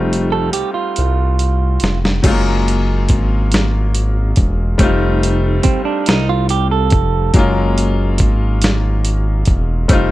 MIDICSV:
0, 0, Header, 1, 5, 480
1, 0, Start_track
1, 0, Tempo, 851064
1, 1262, Time_signature, 6, 3, 24, 8
1, 5704, End_track
2, 0, Start_track
2, 0, Title_t, "Clean electric guitar"
2, 0, Program_c, 0, 27
2, 181, Note_on_c, 0, 69, 77
2, 296, Note_off_c, 0, 69, 0
2, 301, Note_on_c, 0, 67, 86
2, 415, Note_off_c, 0, 67, 0
2, 418, Note_on_c, 0, 65, 73
2, 1117, Note_off_c, 0, 65, 0
2, 3179, Note_on_c, 0, 60, 78
2, 3294, Note_off_c, 0, 60, 0
2, 3300, Note_on_c, 0, 62, 76
2, 3427, Note_off_c, 0, 62, 0
2, 3427, Note_on_c, 0, 63, 90
2, 3539, Note_off_c, 0, 63, 0
2, 3549, Note_on_c, 0, 65, 90
2, 3660, Note_off_c, 0, 65, 0
2, 3669, Note_on_c, 0, 67, 87
2, 3780, Note_off_c, 0, 67, 0
2, 3787, Note_on_c, 0, 69, 79
2, 4126, Note_off_c, 0, 69, 0
2, 5704, End_track
3, 0, Start_track
3, 0, Title_t, "Grand piano"
3, 0, Program_c, 1, 0
3, 0, Control_c, 1, 64, 127
3, 0, Note_on_c, 1, 55, 65
3, 0, Note_on_c, 1, 57, 63
3, 0, Note_on_c, 1, 60, 65
3, 0, Note_on_c, 1, 63, 61
3, 0, Note_on_c, 1, 65, 75
3, 0, Note_on_c, 1, 66, 59
3, 1237, Note_off_c, 1, 55, 0
3, 1241, Note_off_c, 1, 57, 0
3, 1244, Note_off_c, 1, 60, 0
3, 1246, Note_off_c, 1, 63, 0
3, 1251, Note_off_c, 1, 65, 0
3, 1256, Note_on_c, 1, 54, 76
3, 1262, Note_on_c, 1, 56, 67
3, 1269, Note_on_c, 1, 57, 58
3, 1270, Control_c, 1, 64, 0
3, 1271, Note_off_c, 1, 66, 0
3, 1279, Note_on_c, 1, 61, 63
3, 1283, Note_on_c, 1, 65, 81
3, 1302, Note_off_c, 1, 57, 0
3, 1306, Note_on_c, 1, 58, 74
3, 1380, Control_c, 1, 64, 127
3, 2676, Note_off_c, 1, 54, 0
3, 2679, Note_off_c, 1, 56, 0
3, 2688, Note_off_c, 1, 61, 0
3, 2690, Note_off_c, 1, 65, 0
3, 2696, Note_on_c, 1, 55, 82
3, 2701, Note_off_c, 1, 58, 0
3, 2702, Note_on_c, 1, 57, 73
3, 2708, Control_c, 1, 64, 0
3, 2710, Note_on_c, 1, 60, 71
3, 2719, Note_on_c, 1, 63, 76
3, 2724, Note_on_c, 1, 65, 85
3, 2794, Control_c, 1, 64, 127
3, 4116, Note_off_c, 1, 55, 0
3, 4119, Note_off_c, 1, 57, 0
3, 4123, Note_off_c, 1, 60, 0
3, 4128, Note_off_c, 1, 63, 0
3, 4130, Note_off_c, 1, 65, 0
3, 4137, Note_on_c, 1, 54, 78
3, 4143, Note_on_c, 1, 56, 70
3, 4148, Control_c, 1, 64, 0
3, 4151, Note_on_c, 1, 58, 69
3, 4161, Note_on_c, 1, 61, 68
3, 4166, Note_on_c, 1, 65, 87
3, 4240, Control_c, 1, 64, 127
3, 5557, Note_off_c, 1, 54, 0
3, 5560, Note_off_c, 1, 56, 0
3, 5564, Note_off_c, 1, 58, 0
3, 5569, Note_off_c, 1, 61, 0
3, 5571, Note_off_c, 1, 65, 0
3, 5573, Note_on_c, 1, 55, 75
3, 5578, Note_on_c, 1, 57, 70
3, 5586, Note_on_c, 1, 60, 68
3, 5588, Control_c, 1, 64, 0
3, 5593, Note_on_c, 1, 63, 71
3, 5601, Note_on_c, 1, 65, 86
3, 5672, Control_c, 1, 64, 127
3, 5704, Note_off_c, 1, 55, 0
3, 5704, Note_off_c, 1, 57, 0
3, 5704, Note_off_c, 1, 60, 0
3, 5704, Note_off_c, 1, 63, 0
3, 5704, Note_off_c, 1, 65, 0
3, 5704, End_track
4, 0, Start_track
4, 0, Title_t, "Analog synth bass"
4, 0, Program_c, 2, 38
4, 0, Note_on_c, 2, 29, 101
4, 285, Note_off_c, 2, 29, 0
4, 312, Note_on_c, 2, 36, 45
4, 357, Note_off_c, 2, 36, 0
4, 554, Note_on_c, 2, 36, 95
4, 1005, Note_off_c, 2, 36, 0
4, 1031, Note_on_c, 2, 29, 91
4, 1244, Note_off_c, 2, 29, 0
4, 1267, Note_on_c, 2, 30, 97
4, 1754, Note_on_c, 2, 32, 101
4, 1762, Note_off_c, 2, 30, 0
4, 2445, Note_off_c, 2, 32, 0
4, 2473, Note_on_c, 2, 28, 110
4, 2685, Note_off_c, 2, 28, 0
4, 2708, Note_on_c, 2, 29, 108
4, 3162, Note_off_c, 2, 29, 0
4, 3191, Note_on_c, 2, 36, 50
4, 3237, Note_off_c, 2, 36, 0
4, 3430, Note_on_c, 2, 36, 101
4, 3910, Note_on_c, 2, 29, 101
4, 3919, Note_off_c, 2, 36, 0
4, 4123, Note_off_c, 2, 29, 0
4, 4146, Note_on_c, 2, 30, 98
4, 4630, Note_on_c, 2, 32, 95
4, 4638, Note_off_c, 2, 30, 0
4, 5323, Note_off_c, 2, 32, 0
4, 5349, Note_on_c, 2, 28, 102
4, 5563, Note_off_c, 2, 28, 0
4, 5587, Note_on_c, 2, 29, 93
4, 5704, Note_off_c, 2, 29, 0
4, 5704, End_track
5, 0, Start_track
5, 0, Title_t, "Drums"
5, 72, Note_on_c, 9, 42, 53
5, 129, Note_off_c, 9, 42, 0
5, 300, Note_on_c, 9, 42, 75
5, 356, Note_off_c, 9, 42, 0
5, 542, Note_on_c, 9, 42, 57
5, 598, Note_off_c, 9, 42, 0
5, 785, Note_on_c, 9, 42, 49
5, 841, Note_off_c, 9, 42, 0
5, 1014, Note_on_c, 9, 42, 58
5, 1036, Note_on_c, 9, 38, 86
5, 1071, Note_off_c, 9, 42, 0
5, 1093, Note_off_c, 9, 38, 0
5, 1157, Note_on_c, 9, 38, 84
5, 1213, Note_off_c, 9, 38, 0
5, 1262, Note_on_c, 9, 42, 67
5, 1263, Note_on_c, 9, 36, 116
5, 1263, Note_on_c, 9, 49, 108
5, 1318, Note_off_c, 9, 42, 0
5, 1319, Note_off_c, 9, 36, 0
5, 1320, Note_off_c, 9, 49, 0
5, 1512, Note_on_c, 9, 42, 58
5, 1568, Note_off_c, 9, 42, 0
5, 1740, Note_on_c, 9, 42, 53
5, 1747, Note_on_c, 9, 36, 80
5, 1797, Note_off_c, 9, 42, 0
5, 1804, Note_off_c, 9, 36, 0
5, 1983, Note_on_c, 9, 42, 67
5, 1998, Note_on_c, 9, 38, 108
5, 2039, Note_off_c, 9, 42, 0
5, 2054, Note_off_c, 9, 38, 0
5, 2225, Note_on_c, 9, 42, 57
5, 2282, Note_off_c, 9, 42, 0
5, 2458, Note_on_c, 9, 42, 45
5, 2467, Note_on_c, 9, 36, 95
5, 2515, Note_off_c, 9, 42, 0
5, 2523, Note_off_c, 9, 36, 0
5, 2702, Note_on_c, 9, 42, 69
5, 2703, Note_on_c, 9, 36, 127
5, 2758, Note_off_c, 9, 42, 0
5, 2760, Note_off_c, 9, 36, 0
5, 2952, Note_on_c, 9, 42, 61
5, 3008, Note_off_c, 9, 42, 0
5, 3177, Note_on_c, 9, 42, 60
5, 3187, Note_on_c, 9, 36, 87
5, 3234, Note_off_c, 9, 42, 0
5, 3243, Note_off_c, 9, 36, 0
5, 3419, Note_on_c, 9, 42, 67
5, 3434, Note_on_c, 9, 38, 116
5, 3475, Note_off_c, 9, 42, 0
5, 3490, Note_off_c, 9, 38, 0
5, 3661, Note_on_c, 9, 42, 57
5, 3717, Note_off_c, 9, 42, 0
5, 3894, Note_on_c, 9, 42, 47
5, 3905, Note_on_c, 9, 36, 95
5, 3950, Note_off_c, 9, 42, 0
5, 3962, Note_off_c, 9, 36, 0
5, 4138, Note_on_c, 9, 42, 66
5, 4141, Note_on_c, 9, 36, 124
5, 4194, Note_off_c, 9, 42, 0
5, 4198, Note_off_c, 9, 36, 0
5, 4386, Note_on_c, 9, 42, 60
5, 4442, Note_off_c, 9, 42, 0
5, 4615, Note_on_c, 9, 42, 62
5, 4625, Note_on_c, 9, 36, 87
5, 4671, Note_off_c, 9, 42, 0
5, 4681, Note_off_c, 9, 36, 0
5, 4859, Note_on_c, 9, 42, 65
5, 4874, Note_on_c, 9, 38, 106
5, 4916, Note_off_c, 9, 42, 0
5, 4930, Note_off_c, 9, 38, 0
5, 5102, Note_on_c, 9, 42, 60
5, 5158, Note_off_c, 9, 42, 0
5, 5332, Note_on_c, 9, 42, 45
5, 5344, Note_on_c, 9, 36, 92
5, 5389, Note_off_c, 9, 42, 0
5, 5401, Note_off_c, 9, 36, 0
5, 5578, Note_on_c, 9, 42, 68
5, 5581, Note_on_c, 9, 36, 123
5, 5634, Note_off_c, 9, 42, 0
5, 5637, Note_off_c, 9, 36, 0
5, 5704, End_track
0, 0, End_of_file